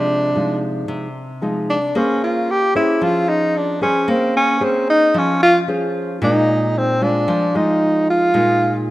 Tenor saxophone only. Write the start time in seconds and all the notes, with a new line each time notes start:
Already playing: D4
1.70 D4
1.98 C#4
2.24 F4
2.51 G4
2.76 E4
3.03 F4
3.29 D#4
3.57 D4
3.83 C#4
4.10 C4
4.36 C#4
4.64 C4
4.90 D#4
5.18 C#4
5.43 F4
6.24 D#4
6.78 C4
7.03 D4
7.56 D#4
8.10 F4